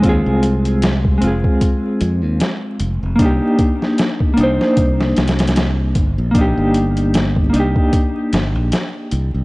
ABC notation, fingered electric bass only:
X:1
M:4/4
L:1/16
Q:"Swing 16ths" 1/4=76
K:Cm
V:1 name="Fingered electric bass" clef=bass
E,, C,,4- C,, F,,, z3 F,, E,, z2 F,,, F,,, | C,, z4 z C,, z C,,2 C,,4 G,,, B,,,- | B,,, G,,,4- G,,, C,, z3 G,,, B,,, z2 C,, C,, |]